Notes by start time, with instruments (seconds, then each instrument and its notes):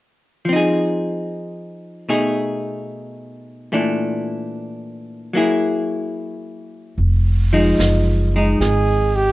0.45 hollow-body jazz guitar F3 C4
0.53 hollow-body jazz guitar D#4 G#4
2.09 hollow-body jazz guitar B2 A3 D#4 G#4
3.72 hollow-body jazz guitar A#2 E3 A3 D4
5.33 hollow-body jazz guitar F#3 A#3 E4 G#4
6.98 upright bass F1, brush sweep
7.53 hollow-body jazz guitar F3 G#3 D#4
7.78 upright bass F#1, snare, hi-hat pedal
8.35 hollow-body jazz guitar G#3 D#4, flugelhorn D#4
8.60 upright bass G#1, flugelhorn G#4, brush sweep, snare
9.16 flugelhorn G4